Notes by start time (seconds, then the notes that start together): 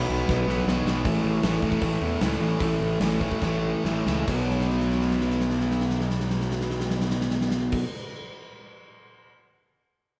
Already playing: B2 F#3 B3 B4
0.09 B1 B2 F#3 B3, crash
0.29 B1, kick, snare
0.48 B1 B2 F#3 B3, snare
0.67 B1 B2 F#3 B3, snare
0.85 B1, snare
1.05 A1 A2 E3 A3, kick, open hi-hat
1.24 A1
1.43 A1 A2 E3 A3, snare, open hi-hat
1.62 A1 A2 E3 A3, kick
1.72 kick
1.81 A1 A2 E3 A3, kick, open hi-hat
2.01 E2
2.21 C#2 A2 E3 A3, snare, open hi-hat
2.40 A1 A2 E3 A3
2.60 A1 A2 E3 A3, kick, open hi-hat
2.81 A1
3.00 A1 A2 E3 A3, snare, open hi-hat
3.21 A2 E3 A3, kick
3.31 kick
3.42 A1 A2 E3 A3, kick, snare
3.85 A1 A2 E3 A3, snare
4.06 C#2 A2 E3 A3, snare
4.27 B1 B2 F#3 B3, kick, crash
4.51 snare
4.61 snare
4.70 snare
4.80 snare
4.90 snare
5.01 snare
5.11 snare
5.21 snare
5.30 snare
5.40 snare
5.50 snare
5.60 snare
5.71 snare
5.81 snare
5.90 snare
6.00 snare
6.10 snare
6.20 snare
6.30 snare
6.41 snare
6.51 snare
6.61 snare
6.71 snare
6.80 snare
6.90 snare
7.01 snare
7.10 snare
7.21 snare
7.30 snare
7.41 snare
7.51 snare
7.72 kick, crash